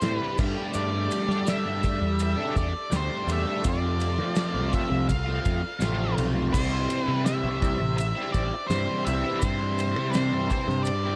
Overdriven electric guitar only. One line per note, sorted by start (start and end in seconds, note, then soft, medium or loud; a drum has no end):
0.02 0.37 C3 medium
0.02 0.37 E3 medium
0.02 0.37 G3 loud
0.02 0.38 E4 loud
0.02 0.38 G4 loud
0.38 0.71 G3 medium
0.38 0.58 A3 medium
0.38 0.57 D4 loud
0.38 0.54 G4 medium
0.56 0.73 A3 medium
0.56 0.74 D4 medium
0.56 0.75 G4 medium
0.72 1.28 G3 medium
0.72 0.94 A3 loud
0.72 0.93 D4 loud
0.72 0.90 G4 loud
0.91 1.30 A3 medium
0.91 1.28 D4 medium
0.91 1.26 G4 medium
1.27 1.46 A3 medium
1.27 1.46 D4 medium
1.27 1.47 G4 medium
1.45 1.80 G3 loud
1.45 1.82 A3 loud
1.45 1.83 D4 loud
1.45 1.83 G4 loud
1.81 2.37 G3 medium
1.81 2.00 A3 medium
1.81 2.00 D4 medium
1.81 2.00 G4 medium
2.01 muted overdriven electric guitar stroke medium
2.36 2.72 A3 medium
2.36 2.71 D4 medium
2.36 2.71 G4 medium
2.72 muted overdriven electric guitar stroke medium
2.90 3.25 G3 medium
2.90 3.26 A3 medium
2.90 3.27 D4 loud
2.90 3.28 G4 loud
3.26 3.61 G3 medium
3.26 3.46 A3 medium
3.26 3.45 D4 medium
3.26 3.44 G4 medium
3.45 3.63 A3 medium
3.45 3.63 D4 medium
3.45 3.62 G4 medium
3.64 4.19 F2 medium
3.64 4.19 C3 loud
3.64 3.83 F3 medium
3.64 3.82 A3 medium
3.64 3.81 C4 loud
3.64 3.80 F4 loud
3.81 4.19 F3 medium
3.81 4.18 A3 medium
3.81 4.18 C4 medium
3.81 4.16 F4 medium
4.17 4.35 F3 medium
4.17 4.35 A3 medium
4.17 4.37 C4 medium
4.17 4.36 F4 medium
4.35 5.08 F2 loud
4.35 5.09 C3 loud
4.35 4.69 F3 loud
4.35 4.71 A3 loud
4.35 4.72 C4 loud
4.35 4.72 F4 loud
4.70 4.90 F3 medium
4.70 4.90 A3 medium
4.70 4.90 C4 medium
4.70 4.89 F4 medium
4.91 muted overdriven electric guitar stroke soft
5.26 5.61 F3 medium
5.26 5.62 A3 medium
5.26 5.63 C4 medium
5.26 5.61 F4 medium
5.62 muted overdriven electric guitar stroke medium
5.79 6.51 F2 medium
5.79 6.51 C3 medium
5.79 6.16 F3 medium
5.79 6.16 A3 loud
5.79 6.18 C4 loud
5.79 6.18 F4 loud
6.17 6.36 F3 medium
6.17 6.35 A3 medium
6.17 6.35 C4 medium
6.17 6.33 F4 medium
6.34 6.52 F3 medium
6.34 6.52 A3 medium
6.34 6.55 C4 medium
6.34 6.51 F4 medium
6.52 7.25 C3 medium
6.52 7.25 E3 loud
6.52 6.74 G3 loud
6.52 6.72 C4 loud
6.52 6.71 E4 medium
6.71 7.09 G3 medium
6.71 7.08 C4 medium
6.71 7.06 E4 medium
7.07 7.26 G3 medium
7.07 7.27 C4 medium
7.07 7.28 E4 medium
7.25 7.98 C3 loud
7.25 7.59 E3 medium
7.25 7.61 G3 loud
7.25 7.61 C4 loud
7.25 7.62 E4 loud
7.61 7.80 E3 medium
7.61 7.81 G3 medium
7.61 7.80 C4 medium
7.61 7.79 E4 medium
7.80 muted overdriven electric guitar stroke soft
8.16 8.54 G3 medium
8.16 8.53 C4 medium
8.16 8.53 E4 medium
8.54 muted overdriven electric guitar stroke medium
8.70 9.41 C3 loud
8.70 9.06 E3 medium
8.70 9.07 G3 loud
8.70 9.08 C4 loud
8.70 9.09 E4 medium
9.07 9.42 E3 medium
9.07 9.27 G3 medium
9.07 9.25 C4 medium
9.07 9.23 E4 medium
9.24 9.43 G3 medium
9.24 9.43 C4 medium
9.24 9.44 E4 medium
9.42 9.96 C3 loud
9.42 9.97 E3 medium
9.42 9.62 G3 loud
9.42 9.60 C4 loud
9.42 9.59 E4 loud
9.60 9.99 G3 medium
9.60 9.97 C4 medium
9.60 9.95 E4 medium
9.97 10.15 G3 medium
9.97 10.15 C4 medium
9.97 10.15 E4 medium
10.14 10.86 C3 loud
10.14 10.48 E3 loud
10.14 10.50 G3 loud
10.14 10.50 C4 loud
10.14 10.51 E4 loud
10.49 10.68 E3 medium
10.49 10.67 G3 medium
10.49 10.67 C4 medium
10.49 10.67 E4 medium
10.68 muted overdriven electric guitar stroke medium
11.04 11.16 G3 medium
11.04 11.16 C4 medium
11.04 11.16 E4 medium